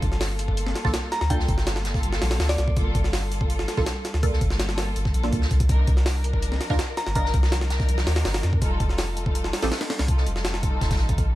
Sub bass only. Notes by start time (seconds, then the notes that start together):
0.02 G1
0.85 A#1
1.21 D2
1.49 G1
2.03 G1
2.22 A#1
2.40 D2
2.58 C2
2.77 G1
2.95 G1
3.77 A#1
4.14 D2
4.41 G1
4.96 G1
5.14 A#1
5.33 D2
5.51 C2
5.69 C2
5.88 C2
6.70 D#2
7.07 G1
7.34 C2
7.89 C2
8.07 D#2
8.25 G1
8.44 F2
8.62 F1
8.80 F1
9.63 A1
9.99 C2
10.27 F1
10.81 F1
11.00 A1